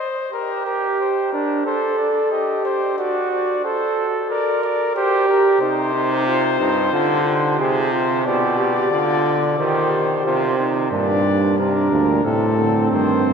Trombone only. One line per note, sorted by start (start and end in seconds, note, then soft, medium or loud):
5.61 6.56 C3 medium
6.60 6.92 G2 medium
6.93 7.58 D3 medium
7.59 8.27 C3 medium
8.26 8.91 B2 medium
8.91 9.57 D3 medium
9.58 10.24 D#3 medium
10.25 10.91 C3 medium
10.92 11.25 A#2 medium
11.25 11.58 A#2 medium
11.58 11.91 C3 medium
11.91 12.24 A#2 medium
12.25 12.58 C3 medium
12.58 12.91 D3 medium
12.92 13.25 D#3 medium
13.25 13.33 C3 medium